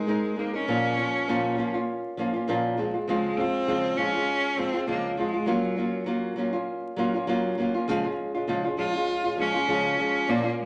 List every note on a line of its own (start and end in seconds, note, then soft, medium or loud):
0.00 0.40 G#3 loud
0.07 0.35 G#3 medium
0.07 0.36 C4 medium
0.07 0.38 D#4 medium
0.07 0.38 A#4 medium
0.36 0.53 G#3 medium
0.36 0.55 A#3 medium
0.36 0.54 C4 medium
0.36 0.54 D#4 medium
0.36 0.52 A#4 medium
0.53 0.68 C4 soft
0.53 1.70 C#4 loud
0.53 0.68 D#4 soft
0.53 0.67 A#4 soft
0.67 0.97 A#2 medium
0.67 0.96 F3 medium
0.67 0.97 A#3 medium
0.67 0.98 C#4 medium
0.67 0.99 F4 medium
0.97 1.27 F3 medium
0.97 1.28 A#3 medium
0.97 1.28 C#4 medium
0.97 1.28 F4 medium
1.28 1.58 A#2 medium
1.28 1.56 F3 medium
1.28 1.57 A#3 medium
1.28 1.58 C#4 medium
1.28 1.59 F4 medium
1.57 1.74 F3 medium
1.57 1.74 A#3 medium
1.57 1.74 C#4 medium
1.57 1.73 F4 medium
1.74 2.18 A#3 soft
1.74 2.18 C#4 medium
1.74 2.17 F4 medium
2.17 2.34 F3 medium
2.17 2.35 A#3 medium
2.17 2.34 C#4 medium
2.17 2.32 F4 medium
2.34 2.47 A#3 soft
2.34 2.48 C#4 medium
2.34 2.47 F4 medium
2.48 2.77 A#2 medium
2.48 2.76 F3 medium
2.48 2.78 A#3 medium
2.48 2.78 C#4 medium
2.48 2.78 F4 medium
2.77 2.94 F3 medium
2.77 2.94 G#3 medium
2.77 2.94 C4 medium
2.77 2.93 F4 medium
2.94 3.08 G#3 soft
2.94 3.08 C4 soft
2.94 3.07 F4 soft
3.08 3.37 C#3 medium
3.08 3.36 F3 medium
3.08 3.39 G#3 loud
3.08 3.37 G#3 medium
3.08 3.38 C4 medium
3.08 3.39 F4 medium
3.37 3.67 F3 medium
3.37 3.67 G#3 medium
3.37 3.99 C4 loud
3.37 3.67 C4 medium
3.37 3.68 F4 medium
3.67 3.97 C#3 medium
3.67 3.96 F3 medium
3.67 3.97 G#3 medium
3.67 3.98 C4 medium
3.67 3.98 F4 medium
3.97 4.14 F3 medium
3.97 4.14 G#3 medium
3.97 4.15 C4 medium
3.97 4.60 C#4 loud
3.97 4.12 F4 medium
4.14 4.56 G#3 soft
4.14 4.57 F4 medium
4.56 4.73 F3 medium
4.56 4.74 G#3 medium
4.56 4.74 C4 medium
4.56 4.88 C4 loud
4.56 4.72 F4 medium
4.73 4.87 G#3 soft
4.73 4.87 C4 soft
4.73 4.87 F4 medium
4.87 5.17 C#3 medium
4.87 5.16 F3 medium
4.87 5.17 G#3 medium
4.87 5.17 A#3 medium
4.87 5.18 C4 medium
4.87 5.18 F4 medium
5.17 5.34 F3 medium
5.17 5.34 G#3 medium
5.17 5.50 G#3 medium
5.17 5.34 C4 medium
5.17 5.32 F4 medium
5.34 5.47 G#3 soft
5.34 5.47 C4 soft
5.34 5.47 F4 medium
5.46 5.75 F#3 medium
5.46 6.08 F#3 medium
5.46 5.76 A#3 medium
5.46 5.77 C#4 medium
5.46 5.78 F4 medium
5.76 6.05 F#3 medium
5.76 6.05 A#3 medium
5.76 6.06 C#4 medium
5.76 6.07 F4 medium
6.06 6.35 F#3 medium
6.06 6.36 A#3 medium
6.06 6.37 C#4 medium
6.06 6.38 F4 medium
6.36 6.53 F#3 medium
6.36 6.54 A#3 medium
6.36 6.53 C#4 medium
6.36 6.52 F4 medium
6.53 6.97 A#3 soft
6.53 6.97 C#4 medium
6.53 6.97 F4 medium
6.96 7.13 F#3 medium
6.96 7.14 A#3 medium
6.96 7.14 C#4 medium
6.96 7.13 F4 medium
7.14 7.27 A#3 soft
7.14 7.28 C#4 medium
7.14 7.28 F4 medium
7.27 7.56 F#3 medium
7.27 7.57 A#3 medium
7.27 7.58 C#4 medium
7.27 7.58 F4 loud
7.58 7.74 F#3 medium
7.58 7.75 A#3 medium
7.58 7.75 C#4 medium
7.58 7.73 F4 medium
7.74 7.88 A#3 soft
7.74 7.88 C#4 soft
7.74 7.88 F4 medium
7.88 8.04 C#3 medium
7.88 8.04 F3 medium
7.88 8.05 G#3 medium
7.88 8.05 C#4 medium
7.88 8.03 F4 medium
8.04 8.35 G#3 soft
8.04 8.34 C#4 medium
8.04 8.33 F4 medium
8.35 8.47 G#3 medium
8.35 8.48 C#4 medium
8.35 8.48 F4 medium
8.47 8.64 C#3 medium
8.47 8.64 F3 medium
8.47 8.65 G#3 medium
8.47 8.65 C#4 medium
8.47 8.63 F4 medium
8.64 8.77 G#3 soft
8.64 8.78 C#4 soft
8.64 8.78 F4 medium
8.77 8.94 F3 medium
8.77 8.94 G#3 medium
8.77 8.94 C#4 medium
8.77 9.34 F4 loud
8.77 8.92 F4 medium
8.94 9.25 G#3 soft
8.94 9.25 C#4 medium
8.94 9.23 F4 medium
9.24 9.37 G#3 soft
9.24 9.38 C#4 soft
9.24 9.38 F4 medium
9.37 9.54 F3 medium
9.37 9.54 G#3 medium
9.37 9.55 C#4 medium
9.37 10.31 C#4 loud
9.37 9.53 F4 medium
9.54 9.68 G#3 soft
9.54 9.68 C#4 soft
9.54 9.68 F4 soft
9.68 9.98 C#3 medium
9.68 9.96 F3 medium
9.68 9.98 G#3 medium
9.68 9.99 C#4 medium
9.68 9.99 F4 medium
9.97 10.27 F3 medium
9.97 10.28 G#3 medium
9.97 10.29 C#4 medium
9.97 10.29 F4 medium
10.28 10.44 A#2 medium
10.28 10.45 F3 medium
10.28 10.45 A#3 medium
10.28 10.59 A#3 loud
10.28 10.44 C#4 medium
10.28 10.43 F4 medium
10.44 10.65 A#3 soft
10.44 10.65 C#4 medium
10.44 10.65 F4 medium
10.62 10.65 G#3 medium